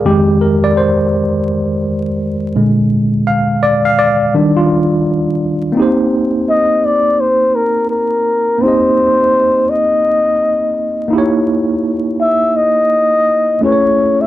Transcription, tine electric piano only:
X:1
M:4/4
L:1/16
Q:"Swing 16ths" 1/4=84
K:Eb
V:1 name="Tine electric piano"
G2 B d c4 z8 | z2 f2 d f d3 F6 z | [B,CEGc]16 | [B,CEGe]12- [B,CEGe]2 [B,E_FG_d]2- |
[B,E_FG_d]12 [=A,^C=E^G=B^c]4 |]
V:2 name="Tine electric piano" clef=bass
[F,,E,A,]6 z8 [B,,D,A,]2 | z8 [E,G,D]8 | z16 | z16 |
z16 |]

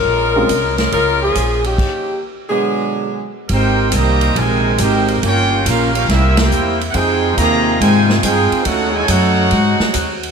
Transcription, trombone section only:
X:1
M:4/4
L:1/8
Q:"Swing" 1/4=140
K:Ab
V:1 name="Trombone section"
z8 | z3 [_C,=D,A,]4 z | [CEG]2 [E,G,B,]2 [C,E,A,]2 [CEG]2 | [B,DG]2 [B,DF] [B,DF] [G,B,=E] [B,EG]2 z |
[CEA]2 [C,E,B,]2 [C,E,A,]2 [CEA]2 | [=A,D_G] _A, [=A,DG]4- [A,DG] z |]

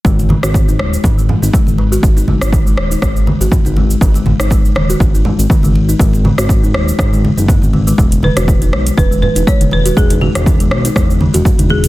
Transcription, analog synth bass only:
X:1
M:4/4
L:1/16
Q:"Swing 16ths" 1/4=121
K:G#m
V:1 name="Analog synth bass" clef=bass
G,,,3 G,,,3 D,,, z G,,,3 G,,, z G,,,3 | G,,,3 G,,,3 D,,, z G,,,3 G,,, z G,,,3 | G,,,3 G,,,3 D,,, z G,,,3 G,,, z G,,,3 | G,,,3 G,,,3 D,,, z G,,,3 F,,,2 G,,,3 |
E,,,3 E,,,3 B,,, z E,,,3 E,,, z E,,,3 | E,,,3 E,,,3 B,,, z E,,,3 E,,, z E,,,3 |]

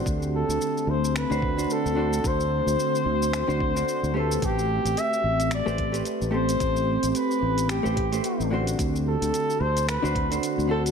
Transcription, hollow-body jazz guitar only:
X:1
M:4/4
L:1/16
Q:"Swing 16ths" 1/4=110
K:Ador
V:1 name="Hollow-body jazz guitar"
[D,DFc]8- [D,DFc] [D,DFc]2 [D,DFc]3 [D,DFc]2- | [D,DFc]8- [D,DFc] [D,DFc]2 [D,DFc]3 [A,GBc]2- | [A,GBc]8- [A,GBc] [A,GBc]2 [A,GBc]3 [A,CGA]2- | [A,CGA]8- [A,CGA] [A,GBc]2 [A,GBc]3 [D,DFc]2- |
[D,DFc]8- [D,DFc] [D,DFc]2 [D,DFc]3 [D,DFc]2 |]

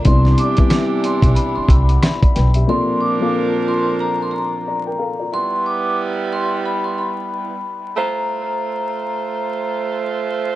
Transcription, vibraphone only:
X:1
M:4/4
L:1/16
Q:"Swing 16ths" 1/4=91
K:Gm
V:1 name="Vibraphone"
c'2 d'2 z2 c' z =b c' b6 | c'2 d'2 z2 c' z b c' b6 | c'2 d'2 z2 c' z =b c' b6 | b12 z4 |]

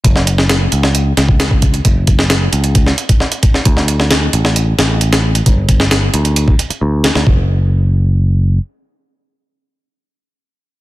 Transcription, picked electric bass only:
X:1
M:4/4
L:1/16
Q:1/4=133
K:F#phr
V:1 name="Picked electric bass" clef=bass
F,,,4- F,,, z C,,3 z C,,4- C,, z | F,,,4- F,,, z C,,3 z6 z | D,,4- D,, z A,,,3 z A,,,4- A,,, z | G,,,4- G,,, z D,,3 z3 D,,2 z D,, |
F,,,12 z4 | z16 |]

